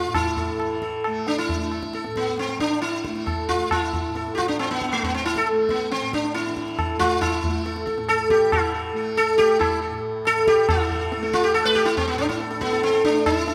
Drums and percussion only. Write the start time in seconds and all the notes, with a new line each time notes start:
0.14 tabla na, tabla ge
0.37 tabla ge
0.60 tabla na
0.82 tabla ke
1.04 tabla na
1.27 tabla te
1.49 tabla tin, tabla ge
1.72 tabla na
1.83 tabla ke
1.93 tabla te
2.04 tabla te
2.16 tabla ke
2.26 tabla te
2.38 tabla te
2.49 tabla te
2.60 tabla ke
2.71 tabla te
2.82 tabla te
2.93 tabla te
3.05 tabla ke
3.16 tabla te
3.27 tabla na, tabla ge
3.49 tabla ge
3.71 tabla na, tabla ge
3.93 tabla ge
4.15 tabla te
4.27 tabla te
4.38 tabla ke
4.49 tabla te
4.60 tabla na
4.81 tabla ke
4.92 tabla te
5.03 tabla tin, tabla ge
5.25 tabla na
5.36 tabla ke
5.47 tabla na
5.69 tabla ke
5.91 tabla te
6.02 tabla te
6.13 tabla ke
6.25 tabla te
6.35 tabla te
6.46 tabla te
6.57 tabla ke
6.68 tabla te
6.79 tabla na, tabla ge
7.00 tabla ge
7.22 tabla na, tabla ge
7.44 tabla ge
7.66 tabla te
7.76 tabla te
7.87 tabla ke
7.98 tabla te
8.09 tabla na
8.30 tabla ke
8.52 tabla na, tabla ge
9.18 tabla na
9.39 tabla ke
9.61 tabla na, tabla ge
10.25 tabla na
10.47 tabla ke
10.69 tabla na, tabla ge
10.90 tabla ge
11.12 tabla te
11.23 tabla te
11.34 tabla ke
11.44 tabla te
11.55 tabla na
11.76 tabla ke
11.87 tabla te
11.97 tabla tin, tabla ge
12.19 tabla na
12.30 tabla ke
12.40 tabla te
12.51 tabla te
12.62 tabla ke
12.72 tabla te
12.83 tabla te
12.94 tabla te
13.04 tabla ke
13.16 tabla te
13.26 tabla na, tabla ge
13.48 tabla te